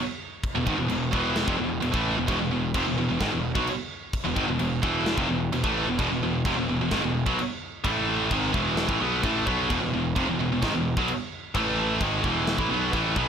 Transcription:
0.44 kick, crash
0.55 E1 E2 B2
0.67 G#1 G#2 D#3, kick
0.78 E1 E2 B2
0.89 E1 E2 B2, crash
1.13 E1 E2 B2 E3, kick
1.36 snare, crash
1.48 F1 F2 C3, kick
1.59 E1 E2 B2
1.82 E1 E2 B2, crash
1.94 A1 A2 E3 A3, kick
2.17 E1 E2 B2
2.28 E1 E2 B2, kick, crash
2.40 E1 E2 B2
2.52 E1 E2 B2
2.74 F1 F2 C3, kick, crash
2.87 E1 E2 B2
2.98 E1 E2 B2
3.10 E1 E2 B2
3.20 G#1 G#2 D#3, kick, snare, crash
3.32 E1 E2 B2
3.55 B1 B2 F#3, kick
3.67 crash
4.13 kick, crash
4.24 E1 E2 B2
4.35 G#1 G#2 D#3, kick
4.47 E1 E2 B2
4.59 E1 E2 B2, crash
4.83 E1 E2 B2 E3, kick
5.06 snare, crash
5.17 F1 F2 C3, kick
5.29 E1 E2 B2
5.52 E1 E2 B2, crash
5.63 A1 A2 E3 A3, kick
5.88 E1 E2 B2
5.99 E1 E2 B2, kick, crash
6.11 E1 E2 B2
6.21 E1 E2 B2
6.45 F1 F2 C3, kick, crash
6.56 E1 E2 B2
6.68 E1 E2 B2
6.79 E1 E2 B2
6.91 G#1 G#2 D#3, kick, snare, crash
7.03 E1 E2 B2
7.26 B1 B2 F#3, kick
7.39 crash
7.84 A1 A2 E3 A3, kick, crash
8.31 G#1 G#2 D#3 G#3, kick, crash
8.54 E1 E2 B2 E3, kick
8.77 snare, crash
8.88 A1 A2 E3, kick
9.01 B1 B2 F#3 B3
9.23 A1 A2 E3 A3, kick, crash
9.46 B1 B2 F#3 B3, kick
9.70 E1 E2 B2, kick, crash
9.81 E1 E2 B2
9.93 E1 E2 B2
10.16 F1 F2 C3, kick, crash
10.27 E1 E2 B2
10.39 E1 E2 B2
10.51 E1 E2 B2
10.62 G#1 G#2 D#3, kick, snare, crash
10.74 E1 E2 B2
10.97 B1 B2 F#3, kick
11.08 crash
11.55 A1 A2 E3 A3, kick, crash
12.00 G#1 G#2 D#3 G#3, kick, crash
12.23 E1 E2 B2 E3, kick
12.47 snare, crash
12.58 A1 A2 E3, kick
12.70 B1 B2 F#3 B3
12.93 A1 A2 E3 A3, kick, crash
13.16 B1 B2 F#3 B3, kick

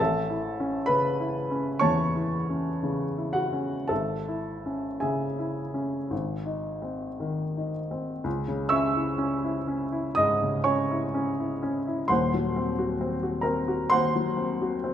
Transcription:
Already playing: A5
0.00 A1 A4 E5
0.30 E4
0.60 C#4
0.86 C#3 B4 B5
1.20 E4
1.51 C#4
1.79 E2 C#5 A5 C#6
2.15 E4
2.50 C#4
2.83 C#3
3.18 E4
3.33 F#4 F#5
3.53 C#4
3.88 G#1 A4 E5 A5
4.28 E4
4.66 C#4
5.00 C#3 G#4 E5 G#5
5.39 E4
5.74 C#4
6.11 G#1
6.45 D#4
6.82 C4
7.20 D#3
7.57 D#4
7.91 C4
8.24 C#2
8.48 C#3
8.69 C#4 E5 C#6 E6
8.96 E4
9.18 C#4
9.44 E4
9.68 C#4
9.92 E4
10.15 G#2 D#5 D#6
10.42 C#3
10.64 C#4 C#5 G#5 C#6
10.91 E4
11.14 C#4
11.40 E4
11.63 C#4
11.87 E4
12.08 D#1 D#2 C5 F#5 C6
12.34 F#3
12.56 C4
12.79 F#4
13.01 C4
13.23 F#4
13.41 C4 A#4 A#5
13.68 F#4
13.90 D#2 C5 F#5 C6
14.16 F#3
14.37 C4
14.62 F#4
14.84 C4

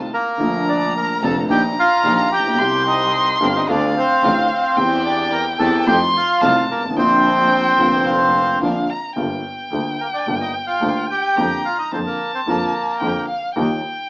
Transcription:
0.13 A#3 A#4
0.37 A#1 A#2 D3 A3 A#3 D4 A#5
0.42 F4
0.69 D4 D5
0.97 A#4 A#5
1.22 F1 F2 D3 A3 A#3 D4 F4 A4 A5
1.48 A#1 A#2 D#3 A#3 D4 D#4 G4 G5 A#5
1.79 F4 F5
2.04 A#1 A#2 D#3 A#3 D4 D#4 G4
2.31 A#1 G4 G5
2.38 A1
2.45 A#1
2.53 B1
2.58 C2 C3 G3 C4 G4 C6
2.87 D#4 D#5
3.40 G1 G2 D3 G3 C4 D4 D#4 G4 D#5
3.49 F5
3.56 D#4 D#5
3.68 D2 D3 A3 C4 D4 F4 D5 F5
3.97 C4 C5
4.23 A1 A2 D3 A3 C4 D4 F4
4.52 C4 C5
4.77 E2 E3 G3 C4 E4 G4 G5
5.05 D4 D5
5.32 A#4 A#5
5.59 E2 E3 G3 C4 E4 G4 A4 A5
5.86 F2 D#3 F3 A3 C4 D#4 F4 G4 G5 C6
6.16 F4 F5
6.41 C2 C3 D#3 A3 C4 D#4 F4 A5
6.69 G#1 A#3 A#4
6.76 G1
6.84 G#1
6.90 A1
6.95 A#1 A#2 D3 A#3 C4 D4 F4 G5
6.99 C5
7.77 F1 F2 D3 A#3 C4 D4
7.81 F4
8.06 F5
8.60 A#1 A#2 D3 A#3 C4 D4 F4 F5
8.90 A#5
9.16 G1 G2 D3 G3 A#3 F4 G5
9.71 D2 D3 G3 A#3 F4
10.01 A#3 A#4
10.14 D4 D5
10.27 G1 G2 D3 G3 A#3 F4
10.40 D#4 D#5
10.67 F4 F5
10.81 D2 D3 G3 A#3 F4
11.10 G4 G5
11.36 F2 D3 F3 A#3 F4 A#5
11.65 F4 F5
11.78 D#4 D#5
11.91 F2 D3 F3 A#3 C4 F4 C5 A5
12.06 A#3 A#4
12.34 C4 C5
12.46 F2 D3 F3 A#3 F4 A#4
13.00 F2 D3 F3 A#3 F4 G5
13.28 F5
13.55 D#2 D#3 G3 A#3 F4 G5

